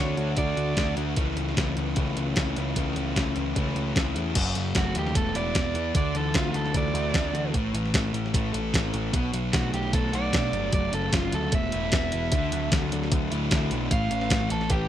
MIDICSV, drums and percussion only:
0, 0, Header, 1, 2, 480
1, 0, Start_track
1, 0, Key_signature, 2, "major"
1, 0, Tempo, 398142
1, 1412, Time_signature, 4, 2, 24, 8
1, 17942, End_track
2, 0, Start_track
2, 0, Title_t, "Drums"
2, 210, Note_on_c, 9, 42, 48
2, 330, Note_off_c, 9, 42, 0
2, 441, Note_on_c, 9, 42, 68
2, 448, Note_on_c, 9, 36, 93
2, 561, Note_off_c, 9, 42, 0
2, 568, Note_off_c, 9, 36, 0
2, 690, Note_on_c, 9, 42, 51
2, 810, Note_off_c, 9, 42, 0
2, 926, Note_on_c, 9, 42, 74
2, 930, Note_on_c, 9, 36, 94
2, 939, Note_on_c, 9, 38, 91
2, 1046, Note_off_c, 9, 42, 0
2, 1051, Note_off_c, 9, 36, 0
2, 1059, Note_off_c, 9, 38, 0
2, 1167, Note_on_c, 9, 42, 53
2, 1288, Note_off_c, 9, 42, 0
2, 1404, Note_on_c, 9, 42, 74
2, 1412, Note_on_c, 9, 36, 98
2, 1524, Note_off_c, 9, 42, 0
2, 1532, Note_off_c, 9, 36, 0
2, 1649, Note_on_c, 9, 42, 57
2, 1770, Note_off_c, 9, 42, 0
2, 1792, Note_on_c, 9, 38, 26
2, 1893, Note_on_c, 9, 42, 74
2, 1894, Note_on_c, 9, 36, 103
2, 1906, Note_off_c, 9, 38, 0
2, 1906, Note_on_c, 9, 38, 98
2, 2014, Note_off_c, 9, 42, 0
2, 2015, Note_off_c, 9, 36, 0
2, 2027, Note_off_c, 9, 38, 0
2, 2131, Note_on_c, 9, 42, 57
2, 2252, Note_off_c, 9, 42, 0
2, 2363, Note_on_c, 9, 42, 79
2, 2373, Note_on_c, 9, 36, 96
2, 2484, Note_off_c, 9, 42, 0
2, 2494, Note_off_c, 9, 36, 0
2, 2613, Note_on_c, 9, 42, 53
2, 2733, Note_off_c, 9, 42, 0
2, 2843, Note_on_c, 9, 42, 78
2, 2853, Note_on_c, 9, 36, 90
2, 2857, Note_on_c, 9, 38, 97
2, 2964, Note_off_c, 9, 42, 0
2, 2973, Note_off_c, 9, 36, 0
2, 2977, Note_off_c, 9, 38, 0
2, 3092, Note_on_c, 9, 42, 54
2, 3213, Note_off_c, 9, 42, 0
2, 3329, Note_on_c, 9, 42, 77
2, 3332, Note_on_c, 9, 36, 89
2, 3449, Note_off_c, 9, 42, 0
2, 3453, Note_off_c, 9, 36, 0
2, 3570, Note_on_c, 9, 42, 53
2, 3691, Note_off_c, 9, 42, 0
2, 3814, Note_on_c, 9, 36, 96
2, 3814, Note_on_c, 9, 42, 72
2, 3827, Note_on_c, 9, 38, 92
2, 3934, Note_off_c, 9, 42, 0
2, 3935, Note_off_c, 9, 36, 0
2, 3947, Note_off_c, 9, 38, 0
2, 4047, Note_on_c, 9, 42, 53
2, 4168, Note_off_c, 9, 42, 0
2, 4294, Note_on_c, 9, 36, 92
2, 4294, Note_on_c, 9, 42, 70
2, 4414, Note_off_c, 9, 36, 0
2, 4414, Note_off_c, 9, 42, 0
2, 4533, Note_on_c, 9, 42, 51
2, 4654, Note_off_c, 9, 42, 0
2, 4773, Note_on_c, 9, 36, 96
2, 4773, Note_on_c, 9, 42, 68
2, 4787, Note_on_c, 9, 38, 97
2, 4893, Note_off_c, 9, 36, 0
2, 4894, Note_off_c, 9, 42, 0
2, 4907, Note_off_c, 9, 38, 0
2, 5013, Note_on_c, 9, 42, 50
2, 5134, Note_off_c, 9, 42, 0
2, 5248, Note_on_c, 9, 42, 88
2, 5248, Note_on_c, 9, 49, 98
2, 5251, Note_on_c, 9, 36, 105
2, 5369, Note_off_c, 9, 42, 0
2, 5369, Note_off_c, 9, 49, 0
2, 5372, Note_off_c, 9, 36, 0
2, 5489, Note_on_c, 9, 42, 68
2, 5609, Note_off_c, 9, 42, 0
2, 5724, Note_on_c, 9, 42, 87
2, 5731, Note_on_c, 9, 36, 104
2, 5737, Note_on_c, 9, 38, 96
2, 5845, Note_off_c, 9, 42, 0
2, 5851, Note_off_c, 9, 36, 0
2, 5858, Note_off_c, 9, 38, 0
2, 5967, Note_on_c, 9, 42, 69
2, 6088, Note_off_c, 9, 42, 0
2, 6106, Note_on_c, 9, 38, 28
2, 6213, Note_on_c, 9, 36, 100
2, 6213, Note_on_c, 9, 42, 91
2, 6227, Note_off_c, 9, 38, 0
2, 6334, Note_off_c, 9, 36, 0
2, 6334, Note_off_c, 9, 42, 0
2, 6451, Note_on_c, 9, 42, 66
2, 6572, Note_off_c, 9, 42, 0
2, 6690, Note_on_c, 9, 42, 84
2, 6694, Note_on_c, 9, 36, 107
2, 6703, Note_on_c, 9, 38, 97
2, 6811, Note_off_c, 9, 42, 0
2, 6815, Note_off_c, 9, 36, 0
2, 6824, Note_off_c, 9, 38, 0
2, 6932, Note_on_c, 9, 42, 61
2, 7052, Note_off_c, 9, 42, 0
2, 7170, Note_on_c, 9, 42, 86
2, 7173, Note_on_c, 9, 36, 109
2, 7291, Note_off_c, 9, 42, 0
2, 7294, Note_off_c, 9, 36, 0
2, 7412, Note_on_c, 9, 42, 64
2, 7533, Note_off_c, 9, 42, 0
2, 7645, Note_on_c, 9, 42, 83
2, 7650, Note_on_c, 9, 36, 109
2, 7658, Note_on_c, 9, 38, 103
2, 7766, Note_off_c, 9, 42, 0
2, 7771, Note_off_c, 9, 36, 0
2, 7779, Note_off_c, 9, 38, 0
2, 7889, Note_on_c, 9, 42, 61
2, 8009, Note_off_c, 9, 42, 0
2, 8025, Note_on_c, 9, 38, 30
2, 8130, Note_on_c, 9, 42, 86
2, 8132, Note_on_c, 9, 36, 102
2, 8146, Note_off_c, 9, 38, 0
2, 8251, Note_off_c, 9, 42, 0
2, 8253, Note_off_c, 9, 36, 0
2, 8378, Note_on_c, 9, 42, 63
2, 8499, Note_off_c, 9, 42, 0
2, 8609, Note_on_c, 9, 42, 86
2, 8612, Note_on_c, 9, 36, 101
2, 8623, Note_on_c, 9, 38, 100
2, 8730, Note_off_c, 9, 42, 0
2, 8733, Note_off_c, 9, 36, 0
2, 8743, Note_off_c, 9, 38, 0
2, 8858, Note_on_c, 9, 42, 63
2, 8979, Note_off_c, 9, 42, 0
2, 9092, Note_on_c, 9, 36, 98
2, 9093, Note_on_c, 9, 42, 85
2, 9213, Note_off_c, 9, 36, 0
2, 9214, Note_off_c, 9, 42, 0
2, 9338, Note_on_c, 9, 42, 68
2, 9458, Note_off_c, 9, 42, 0
2, 9470, Note_on_c, 9, 38, 32
2, 9572, Note_on_c, 9, 42, 93
2, 9573, Note_on_c, 9, 36, 108
2, 9585, Note_off_c, 9, 38, 0
2, 9585, Note_on_c, 9, 38, 109
2, 9692, Note_off_c, 9, 42, 0
2, 9694, Note_off_c, 9, 36, 0
2, 9706, Note_off_c, 9, 38, 0
2, 9817, Note_on_c, 9, 42, 67
2, 9938, Note_off_c, 9, 42, 0
2, 9956, Note_on_c, 9, 38, 28
2, 10056, Note_on_c, 9, 36, 109
2, 10061, Note_on_c, 9, 42, 93
2, 10076, Note_off_c, 9, 38, 0
2, 10176, Note_off_c, 9, 36, 0
2, 10182, Note_off_c, 9, 42, 0
2, 10299, Note_on_c, 9, 42, 69
2, 10419, Note_off_c, 9, 42, 0
2, 10535, Note_on_c, 9, 36, 101
2, 10540, Note_on_c, 9, 42, 90
2, 10554, Note_on_c, 9, 38, 108
2, 10655, Note_off_c, 9, 36, 0
2, 10661, Note_off_c, 9, 42, 0
2, 10674, Note_off_c, 9, 38, 0
2, 10774, Note_on_c, 9, 42, 65
2, 10895, Note_off_c, 9, 42, 0
2, 11013, Note_on_c, 9, 36, 105
2, 11016, Note_on_c, 9, 42, 91
2, 11134, Note_off_c, 9, 36, 0
2, 11136, Note_off_c, 9, 42, 0
2, 11254, Note_on_c, 9, 42, 71
2, 11375, Note_off_c, 9, 42, 0
2, 11492, Note_on_c, 9, 42, 90
2, 11494, Note_on_c, 9, 36, 111
2, 11506, Note_on_c, 9, 38, 114
2, 11613, Note_off_c, 9, 42, 0
2, 11614, Note_off_c, 9, 36, 0
2, 11626, Note_off_c, 9, 38, 0
2, 11738, Note_on_c, 9, 42, 60
2, 11859, Note_off_c, 9, 42, 0
2, 11975, Note_on_c, 9, 36, 106
2, 11975, Note_on_c, 9, 42, 87
2, 12095, Note_off_c, 9, 42, 0
2, 12096, Note_off_c, 9, 36, 0
2, 12218, Note_on_c, 9, 42, 63
2, 12339, Note_off_c, 9, 42, 0
2, 12455, Note_on_c, 9, 36, 98
2, 12458, Note_on_c, 9, 42, 83
2, 12471, Note_on_c, 9, 38, 105
2, 12575, Note_off_c, 9, 36, 0
2, 12579, Note_off_c, 9, 42, 0
2, 12592, Note_off_c, 9, 38, 0
2, 12698, Note_on_c, 9, 42, 56
2, 12819, Note_off_c, 9, 42, 0
2, 12930, Note_on_c, 9, 42, 85
2, 12933, Note_on_c, 9, 36, 102
2, 13051, Note_off_c, 9, 42, 0
2, 13054, Note_off_c, 9, 36, 0
2, 13175, Note_on_c, 9, 42, 66
2, 13295, Note_off_c, 9, 42, 0
2, 13413, Note_on_c, 9, 42, 95
2, 13415, Note_on_c, 9, 36, 104
2, 13427, Note_on_c, 9, 38, 108
2, 13534, Note_off_c, 9, 42, 0
2, 13536, Note_off_c, 9, 36, 0
2, 13547, Note_off_c, 9, 38, 0
2, 13653, Note_on_c, 9, 42, 70
2, 13773, Note_off_c, 9, 42, 0
2, 13889, Note_on_c, 9, 42, 91
2, 13895, Note_on_c, 9, 36, 112
2, 14010, Note_off_c, 9, 42, 0
2, 14016, Note_off_c, 9, 36, 0
2, 14132, Note_on_c, 9, 42, 68
2, 14253, Note_off_c, 9, 42, 0
2, 14368, Note_on_c, 9, 42, 87
2, 14375, Note_on_c, 9, 36, 104
2, 14381, Note_on_c, 9, 38, 103
2, 14488, Note_off_c, 9, 42, 0
2, 14495, Note_off_c, 9, 36, 0
2, 14502, Note_off_c, 9, 38, 0
2, 14611, Note_on_c, 9, 42, 68
2, 14732, Note_off_c, 9, 42, 0
2, 14849, Note_on_c, 9, 42, 95
2, 14855, Note_on_c, 9, 36, 104
2, 14969, Note_off_c, 9, 42, 0
2, 14976, Note_off_c, 9, 36, 0
2, 15095, Note_on_c, 9, 42, 76
2, 15216, Note_off_c, 9, 42, 0
2, 15332, Note_on_c, 9, 42, 91
2, 15335, Note_on_c, 9, 36, 110
2, 15346, Note_on_c, 9, 38, 108
2, 15453, Note_off_c, 9, 42, 0
2, 15456, Note_off_c, 9, 36, 0
2, 15466, Note_off_c, 9, 38, 0
2, 15577, Note_on_c, 9, 42, 69
2, 15698, Note_off_c, 9, 42, 0
2, 15715, Note_on_c, 9, 38, 31
2, 15813, Note_on_c, 9, 42, 92
2, 15814, Note_on_c, 9, 36, 112
2, 15836, Note_off_c, 9, 38, 0
2, 15933, Note_off_c, 9, 42, 0
2, 15935, Note_off_c, 9, 36, 0
2, 16055, Note_on_c, 9, 42, 65
2, 16175, Note_off_c, 9, 42, 0
2, 16289, Note_on_c, 9, 42, 89
2, 16292, Note_on_c, 9, 36, 107
2, 16302, Note_on_c, 9, 38, 103
2, 16409, Note_off_c, 9, 42, 0
2, 16413, Note_off_c, 9, 36, 0
2, 16422, Note_off_c, 9, 38, 0
2, 16528, Note_on_c, 9, 42, 62
2, 16648, Note_off_c, 9, 42, 0
2, 16770, Note_on_c, 9, 36, 109
2, 16771, Note_on_c, 9, 42, 93
2, 16891, Note_off_c, 9, 36, 0
2, 16892, Note_off_c, 9, 42, 0
2, 17009, Note_on_c, 9, 42, 71
2, 17130, Note_off_c, 9, 42, 0
2, 17135, Note_on_c, 9, 38, 33
2, 17244, Note_on_c, 9, 42, 94
2, 17247, Note_on_c, 9, 36, 110
2, 17256, Note_off_c, 9, 38, 0
2, 17257, Note_on_c, 9, 38, 104
2, 17365, Note_off_c, 9, 42, 0
2, 17367, Note_off_c, 9, 36, 0
2, 17378, Note_off_c, 9, 38, 0
2, 17485, Note_on_c, 9, 42, 66
2, 17605, Note_off_c, 9, 42, 0
2, 17616, Note_on_c, 9, 38, 32
2, 17718, Note_on_c, 9, 42, 91
2, 17723, Note_on_c, 9, 36, 116
2, 17736, Note_off_c, 9, 38, 0
2, 17839, Note_off_c, 9, 42, 0
2, 17844, Note_off_c, 9, 36, 0
2, 17942, End_track
0, 0, End_of_file